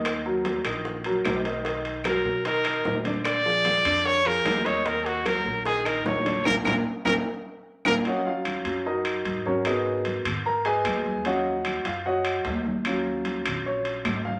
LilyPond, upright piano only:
\new Staff \with { instrumentName = "Upright piano" } { \time 4/4 \key ees \minor \tempo 4 = 150 << { <ees ees' ees''>8 <ges ges' bes'>4 <ees ees' ees''>4 <ges ges' bes'>4 <ees ees' ees''>8 | <dis dis' dis''>4 <fis fis' ais'>4 <dis dis' dis''>8 <dis dis' dis''>4 <d d' d''>8~ | <d d' d''>8 <f f' aes'>4 <d d' d''>4 <f f' aes'>4 <ees ees' ees''>8 | <ees ees' ees''>4 <ges ges' bes'>4 <ees ees' ees''>8 <ees ees' ees''>4 <d d' d''>8 |
<bes d' f'>8 <bes d' f'>8 r8 <bes d' f'>8 r4. <bes d' f'>8 | <ges' des'' ees'' ges''>8 <f' f''>4. <ees' ges' bes' ees''>4. <des' ges' bes' des''>8 | <ees' aes' ces'' ees''>4 r4 <bes' bes''>8 <aes' ces'' ees'' aes''>4. | <ges' des'' ees'' ges''>4. <f' f''>8 <ges' des'' ees'' ges''>4 r4 |
r2 des''4. f''8 | } \\ { r1 | r1 | r1 | r1 |
r1 | <ges des' f'>4. <ges des' f'>8 r2 | <ces' ges' bes'>4. r2 r8 | <ges des' f'>8 r2. r8 |
<ges des' f'>1 | } >> }